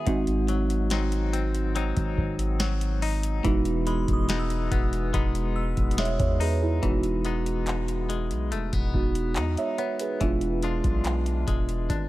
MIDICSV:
0, 0, Header, 1, 6, 480
1, 0, Start_track
1, 0, Key_signature, 4, "major"
1, 0, Tempo, 845070
1, 37, Time_signature, 4, 2, 24, 8
1, 6866, End_track
2, 0, Start_track
2, 0, Title_t, "Synth bell"
2, 0, Program_c, 0, 98
2, 2197, Note_on_c, 0, 83, 56
2, 2347, Note_on_c, 0, 87, 54
2, 2496, Note_on_c, 0, 88, 60
2, 3150, Note_off_c, 0, 88, 0
2, 3157, Note_on_c, 0, 88, 65
2, 3395, Note_off_c, 0, 83, 0
2, 3530, Note_off_c, 0, 87, 0
2, 4094, Note_off_c, 0, 88, 0
2, 6866, End_track
3, 0, Start_track
3, 0, Title_t, "Synth keys"
3, 0, Program_c, 1, 88
3, 0, Control_c, 1, 64, 127
3, 33, Note_on_c, 1, 56, 79
3, 38, Note_on_c, 1, 60, 68
3, 44, Note_on_c, 1, 63, 72
3, 45, Control_c, 1, 64, 0
3, 50, Note_on_c, 1, 66, 86
3, 130, Control_c, 1, 64, 127
3, 1932, Note_off_c, 1, 56, 0
3, 1935, Note_off_c, 1, 60, 0
3, 1938, Note_off_c, 1, 63, 0
3, 1941, Note_off_c, 1, 66, 0
3, 1952, Note_on_c, 1, 56, 78
3, 1958, Note_on_c, 1, 59, 73
3, 1963, Note_on_c, 1, 63, 75
3, 1965, Control_c, 1, 64, 0
3, 1970, Note_on_c, 1, 66, 86
3, 2065, Control_c, 1, 64, 127
3, 3378, Note_off_c, 1, 63, 0
3, 3381, Note_off_c, 1, 66, 0
3, 3401, Note_on_c, 1, 76, 63
3, 3405, Note_on_c, 1, 73, 59
3, 3513, Note_off_c, 1, 76, 0
3, 3514, Note_off_c, 1, 73, 0
3, 3521, Note_on_c, 1, 73, 68
3, 3633, Note_off_c, 1, 73, 0
3, 3640, Note_on_c, 1, 71, 67
3, 3644, Note_on_c, 1, 68, 60
3, 3753, Note_off_c, 1, 68, 0
3, 3753, Note_off_c, 1, 71, 0
3, 3760, Note_on_c, 1, 68, 68
3, 3764, Note_on_c, 1, 64, 54
3, 3852, Note_off_c, 1, 56, 0
3, 3855, Note_off_c, 1, 59, 0
3, 3872, Note_on_c, 1, 56, 75
3, 3878, Note_on_c, 1, 59, 68
3, 3884, Control_c, 1, 64, 0
3, 3884, Note_on_c, 1, 63, 65
3, 3890, Note_on_c, 1, 66, 77
3, 3987, Note_off_c, 1, 68, 0
3, 3989, Note_off_c, 1, 64, 0
3, 3998, Control_c, 1, 64, 127
3, 5052, Note_off_c, 1, 56, 0
3, 5055, Note_off_c, 1, 59, 0
3, 5058, Note_off_c, 1, 63, 0
3, 5061, Note_off_c, 1, 66, 0
3, 5077, Note_on_c, 1, 56, 51
3, 5081, Note_on_c, 1, 59, 48
3, 5084, Note_on_c, 1, 63, 47
3, 5086, Note_on_c, 1, 66, 57
3, 5442, Note_on_c, 1, 76, 63
3, 5445, Note_on_c, 1, 73, 50
3, 5554, Note_off_c, 1, 76, 0
3, 5556, Note_off_c, 1, 73, 0
3, 5562, Note_on_c, 1, 73, 69
3, 5674, Note_off_c, 1, 73, 0
3, 5682, Note_on_c, 1, 71, 64
3, 5686, Note_on_c, 1, 68, 52
3, 5787, Note_off_c, 1, 56, 0
3, 5793, Note_off_c, 1, 59, 0
3, 5794, Note_on_c, 1, 56, 73
3, 5800, Note_on_c, 1, 59, 70
3, 5801, Note_off_c, 1, 63, 0
3, 5802, Note_off_c, 1, 66, 0
3, 5805, Note_on_c, 1, 62, 68
3, 5806, Control_c, 1, 64, 0
3, 5811, Note_on_c, 1, 65, 80
3, 5896, Control_c, 1, 64, 127
3, 5908, Note_off_c, 1, 71, 0
3, 5910, Note_off_c, 1, 68, 0
3, 6866, Note_off_c, 1, 56, 0
3, 6866, Note_off_c, 1, 59, 0
3, 6866, Note_off_c, 1, 62, 0
3, 6866, Note_off_c, 1, 65, 0
3, 6866, End_track
4, 0, Start_track
4, 0, Title_t, "Clean electric guitar"
4, 0, Program_c, 2, 27
4, 0, Note_on_c, 2, 59, 62
4, 0, Note_on_c, 2, 63, 64
4, 0, Note_on_c, 2, 68, 68
4, 37, Note_on_c, 2, 44, 91
4, 86, Note_off_c, 2, 59, 0
4, 276, Note_on_c, 2, 54, 64
4, 293, Note_off_c, 2, 68, 0
4, 509, Note_off_c, 2, 54, 0
4, 516, Note_on_c, 2, 54, 65
4, 519, Note_on_c, 2, 60, 68
4, 521, Note_off_c, 2, 63, 0
4, 523, Note_on_c, 2, 63, 68
4, 749, Note_off_c, 2, 60, 0
4, 756, Note_on_c, 2, 60, 61
4, 989, Note_off_c, 2, 54, 0
4, 992, Note_off_c, 2, 60, 0
4, 996, Note_on_c, 2, 54, 63
4, 999, Note_on_c, 2, 60, 67
4, 1000, Note_off_c, 2, 63, 0
4, 1003, Note_on_c, 2, 63, 70
4, 1470, Note_off_c, 2, 54, 0
4, 1477, Note_on_c, 2, 54, 61
4, 1715, Note_off_c, 2, 63, 0
4, 1717, Note_on_c, 2, 63, 69
4, 1957, Note_off_c, 2, 44, 0
4, 1957, Note_on_c, 2, 52, 95
4, 2005, Note_off_c, 2, 54, 0
4, 2006, Note_off_c, 2, 60, 0
4, 2197, Note_on_c, 2, 56, 64
4, 2434, Note_off_c, 2, 56, 0
4, 2437, Note_on_c, 2, 56, 62
4, 2440, Note_on_c, 2, 59, 62
4, 2441, Note_off_c, 2, 63, 0
4, 2444, Note_on_c, 2, 63, 68
4, 2675, Note_off_c, 2, 59, 0
4, 2678, Note_on_c, 2, 59, 65
4, 2915, Note_off_c, 2, 56, 0
4, 2917, Note_on_c, 2, 56, 65
4, 2918, Note_off_c, 2, 59, 0
4, 2920, Note_on_c, 2, 59, 63
4, 2921, Note_off_c, 2, 63, 0
4, 2923, Note_on_c, 2, 63, 68
4, 3394, Note_off_c, 2, 56, 0
4, 3397, Note_on_c, 2, 56, 58
4, 3634, Note_off_c, 2, 63, 0
4, 3637, Note_on_c, 2, 63, 67
4, 3875, Note_off_c, 2, 52, 0
4, 3878, Note_on_c, 2, 52, 85
4, 4116, Note_off_c, 2, 56, 0
4, 4118, Note_on_c, 2, 56, 60
4, 4119, Note_off_c, 2, 59, 0
4, 4122, Note_on_c, 2, 59, 58
4, 4123, Note_off_c, 2, 63, 0
4, 4125, Note_on_c, 2, 63, 65
4, 4595, Note_off_c, 2, 56, 0
4, 4597, Note_on_c, 2, 56, 54
4, 4836, Note_off_c, 2, 59, 0
4, 4838, Note_on_c, 2, 57, 61
4, 4958, Note_off_c, 2, 57, 0
4, 4958, Note_on_c, 2, 59, 52
4, 5311, Note_off_c, 2, 63, 0
4, 5318, Note_on_c, 2, 63, 62
4, 5551, Note_off_c, 2, 59, 0
4, 5558, Note_on_c, 2, 59, 60
4, 5796, Note_off_c, 2, 52, 0
4, 5798, Note_on_c, 2, 52, 85
4, 5846, Note_off_c, 2, 63, 0
4, 6036, Note_off_c, 2, 56, 0
4, 6039, Note_on_c, 2, 56, 61
4, 6040, Note_off_c, 2, 59, 0
4, 6042, Note_on_c, 2, 62, 61
4, 6046, Note_on_c, 2, 65, 67
4, 6511, Note_off_c, 2, 56, 0
4, 6518, Note_on_c, 2, 56, 57
4, 6751, Note_off_c, 2, 62, 0
4, 6757, Note_on_c, 2, 62, 60
4, 6866, Note_off_c, 2, 52, 0
4, 6866, Note_off_c, 2, 56, 0
4, 6866, Note_off_c, 2, 62, 0
4, 6866, Note_off_c, 2, 65, 0
4, 6866, End_track
5, 0, Start_track
5, 0, Title_t, "808-style bass"
5, 0, Program_c, 3, 38
5, 37, Note_on_c, 3, 32, 112
5, 1095, Note_off_c, 3, 32, 0
5, 1117, Note_on_c, 3, 32, 105
5, 1934, Note_off_c, 3, 32, 0
5, 1957, Note_on_c, 3, 28, 112
5, 2303, Note_off_c, 3, 28, 0
5, 2318, Note_on_c, 3, 28, 104
5, 2663, Note_off_c, 3, 28, 0
5, 2677, Note_on_c, 3, 28, 101
5, 2908, Note_off_c, 3, 28, 0
5, 2918, Note_on_c, 3, 28, 107
5, 3263, Note_off_c, 3, 28, 0
5, 3278, Note_on_c, 3, 28, 108
5, 3508, Note_off_c, 3, 28, 0
5, 3518, Note_on_c, 3, 40, 97
5, 3863, Note_off_c, 3, 40, 0
5, 3878, Note_on_c, 3, 28, 100
5, 4718, Note_on_c, 3, 35, 94
5, 4727, Note_off_c, 3, 28, 0
5, 4838, Note_on_c, 3, 28, 92
5, 4846, Note_off_c, 3, 35, 0
5, 4952, Note_off_c, 3, 28, 0
5, 4958, Note_on_c, 3, 28, 101
5, 5318, Note_on_c, 3, 40, 91
5, 5327, Note_off_c, 3, 28, 0
5, 5432, Note_off_c, 3, 40, 0
5, 5798, Note_on_c, 3, 28, 105
5, 6143, Note_off_c, 3, 28, 0
5, 6158, Note_on_c, 3, 35, 99
5, 6503, Note_off_c, 3, 35, 0
5, 6517, Note_on_c, 3, 28, 98
5, 6748, Note_off_c, 3, 28, 0
5, 6757, Note_on_c, 3, 32, 102
5, 6866, Note_off_c, 3, 32, 0
5, 6866, End_track
6, 0, Start_track
6, 0, Title_t, "Drums"
6, 37, Note_on_c, 9, 36, 110
6, 37, Note_on_c, 9, 42, 72
6, 94, Note_off_c, 9, 36, 0
6, 94, Note_off_c, 9, 42, 0
6, 155, Note_on_c, 9, 42, 51
6, 211, Note_off_c, 9, 42, 0
6, 275, Note_on_c, 9, 42, 65
6, 332, Note_off_c, 9, 42, 0
6, 398, Note_on_c, 9, 42, 54
6, 455, Note_off_c, 9, 42, 0
6, 513, Note_on_c, 9, 42, 76
6, 518, Note_on_c, 9, 38, 122
6, 569, Note_off_c, 9, 42, 0
6, 575, Note_off_c, 9, 38, 0
6, 636, Note_on_c, 9, 42, 55
6, 693, Note_off_c, 9, 42, 0
6, 758, Note_on_c, 9, 42, 79
6, 815, Note_off_c, 9, 42, 0
6, 878, Note_on_c, 9, 42, 50
6, 935, Note_off_c, 9, 42, 0
6, 998, Note_on_c, 9, 42, 76
6, 1054, Note_off_c, 9, 42, 0
6, 1117, Note_on_c, 9, 36, 87
6, 1117, Note_on_c, 9, 42, 51
6, 1173, Note_off_c, 9, 36, 0
6, 1173, Note_off_c, 9, 42, 0
6, 1237, Note_on_c, 9, 36, 99
6, 1294, Note_off_c, 9, 36, 0
6, 1358, Note_on_c, 9, 42, 59
6, 1415, Note_off_c, 9, 42, 0
6, 1476, Note_on_c, 9, 38, 123
6, 1476, Note_on_c, 9, 42, 80
6, 1533, Note_off_c, 9, 38, 0
6, 1533, Note_off_c, 9, 42, 0
6, 1597, Note_on_c, 9, 42, 53
6, 1654, Note_off_c, 9, 42, 0
6, 1717, Note_on_c, 9, 42, 50
6, 1718, Note_on_c, 9, 46, 83
6, 1774, Note_off_c, 9, 42, 0
6, 1775, Note_off_c, 9, 46, 0
6, 1837, Note_on_c, 9, 42, 88
6, 1894, Note_off_c, 9, 42, 0
6, 1957, Note_on_c, 9, 36, 121
6, 1957, Note_on_c, 9, 42, 67
6, 2014, Note_off_c, 9, 36, 0
6, 2014, Note_off_c, 9, 42, 0
6, 2075, Note_on_c, 9, 42, 50
6, 2132, Note_off_c, 9, 42, 0
6, 2196, Note_on_c, 9, 42, 65
6, 2253, Note_off_c, 9, 42, 0
6, 2317, Note_on_c, 9, 36, 94
6, 2319, Note_on_c, 9, 42, 52
6, 2374, Note_off_c, 9, 36, 0
6, 2376, Note_off_c, 9, 42, 0
6, 2435, Note_on_c, 9, 42, 70
6, 2440, Note_on_c, 9, 38, 121
6, 2492, Note_off_c, 9, 42, 0
6, 2497, Note_off_c, 9, 38, 0
6, 2557, Note_on_c, 9, 42, 51
6, 2614, Note_off_c, 9, 42, 0
6, 2677, Note_on_c, 9, 36, 103
6, 2679, Note_on_c, 9, 42, 84
6, 2734, Note_off_c, 9, 36, 0
6, 2736, Note_off_c, 9, 42, 0
6, 2799, Note_on_c, 9, 42, 51
6, 2856, Note_off_c, 9, 42, 0
6, 2918, Note_on_c, 9, 36, 96
6, 2919, Note_on_c, 9, 42, 75
6, 2974, Note_off_c, 9, 36, 0
6, 2976, Note_off_c, 9, 42, 0
6, 3039, Note_on_c, 9, 42, 57
6, 3096, Note_off_c, 9, 42, 0
6, 3277, Note_on_c, 9, 36, 94
6, 3278, Note_on_c, 9, 42, 36
6, 3334, Note_off_c, 9, 36, 0
6, 3335, Note_off_c, 9, 42, 0
6, 3358, Note_on_c, 9, 42, 49
6, 3397, Note_on_c, 9, 38, 123
6, 3415, Note_off_c, 9, 42, 0
6, 3438, Note_on_c, 9, 42, 60
6, 3454, Note_off_c, 9, 38, 0
6, 3495, Note_off_c, 9, 42, 0
6, 3518, Note_on_c, 9, 36, 95
6, 3519, Note_on_c, 9, 42, 53
6, 3575, Note_off_c, 9, 36, 0
6, 3576, Note_off_c, 9, 42, 0
6, 3639, Note_on_c, 9, 46, 84
6, 3696, Note_off_c, 9, 46, 0
6, 3878, Note_on_c, 9, 36, 108
6, 3878, Note_on_c, 9, 42, 64
6, 3935, Note_off_c, 9, 36, 0
6, 3935, Note_off_c, 9, 42, 0
6, 3995, Note_on_c, 9, 42, 45
6, 4052, Note_off_c, 9, 42, 0
6, 4116, Note_on_c, 9, 42, 60
6, 4173, Note_off_c, 9, 42, 0
6, 4239, Note_on_c, 9, 42, 51
6, 4296, Note_off_c, 9, 42, 0
6, 4354, Note_on_c, 9, 42, 70
6, 4360, Note_on_c, 9, 39, 115
6, 4411, Note_off_c, 9, 42, 0
6, 4417, Note_off_c, 9, 39, 0
6, 4478, Note_on_c, 9, 42, 48
6, 4534, Note_off_c, 9, 42, 0
6, 4599, Note_on_c, 9, 42, 79
6, 4656, Note_off_c, 9, 42, 0
6, 4719, Note_on_c, 9, 42, 48
6, 4776, Note_off_c, 9, 42, 0
6, 4839, Note_on_c, 9, 42, 73
6, 4895, Note_off_c, 9, 42, 0
6, 4957, Note_on_c, 9, 36, 86
6, 4958, Note_on_c, 9, 42, 52
6, 5014, Note_off_c, 9, 36, 0
6, 5014, Note_off_c, 9, 42, 0
6, 5077, Note_on_c, 9, 36, 98
6, 5134, Note_off_c, 9, 36, 0
6, 5199, Note_on_c, 9, 42, 54
6, 5255, Note_off_c, 9, 42, 0
6, 5316, Note_on_c, 9, 39, 110
6, 5316, Note_on_c, 9, 42, 70
6, 5373, Note_off_c, 9, 39, 0
6, 5373, Note_off_c, 9, 42, 0
6, 5438, Note_on_c, 9, 42, 47
6, 5495, Note_off_c, 9, 42, 0
6, 5557, Note_on_c, 9, 42, 44
6, 5614, Note_off_c, 9, 42, 0
6, 5677, Note_on_c, 9, 42, 82
6, 5734, Note_off_c, 9, 42, 0
6, 5797, Note_on_c, 9, 36, 106
6, 5797, Note_on_c, 9, 42, 64
6, 5854, Note_off_c, 9, 36, 0
6, 5854, Note_off_c, 9, 42, 0
6, 5914, Note_on_c, 9, 42, 48
6, 5971, Note_off_c, 9, 42, 0
6, 6035, Note_on_c, 9, 42, 63
6, 6092, Note_off_c, 9, 42, 0
6, 6157, Note_on_c, 9, 36, 85
6, 6158, Note_on_c, 9, 42, 49
6, 6214, Note_off_c, 9, 36, 0
6, 6215, Note_off_c, 9, 42, 0
6, 6273, Note_on_c, 9, 42, 65
6, 6279, Note_on_c, 9, 39, 116
6, 6330, Note_off_c, 9, 42, 0
6, 6336, Note_off_c, 9, 39, 0
6, 6396, Note_on_c, 9, 42, 49
6, 6453, Note_off_c, 9, 42, 0
6, 6517, Note_on_c, 9, 36, 97
6, 6518, Note_on_c, 9, 42, 75
6, 6574, Note_off_c, 9, 36, 0
6, 6575, Note_off_c, 9, 42, 0
6, 6638, Note_on_c, 9, 42, 44
6, 6695, Note_off_c, 9, 42, 0
6, 6757, Note_on_c, 9, 36, 85
6, 6759, Note_on_c, 9, 42, 71
6, 6814, Note_off_c, 9, 36, 0
6, 6815, Note_off_c, 9, 42, 0
6, 6866, End_track
0, 0, End_of_file